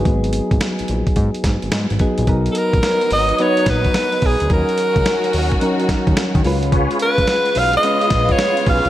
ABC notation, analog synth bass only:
X:1
M:4/4
L:1/16
Q:"Swing 16ths" 1/4=108
K:Blyd
V:1 name="Analog synth bass" clef=bass
G,,,3 G,,, z A,,, A,,, z G,, z G,, G,,, G,, G,,, z A,,, | B,,,2 z A,,, z2 G,,,2 z2 A,,,2 z2 B,,, =D,, | D,, z2 C,, z2 D,,2 z2 D,, D,, z D, C,,2- | C,,2 z C,, z2 B,,,2 z2 A,,,2 z2 B,,, ^B,,, |]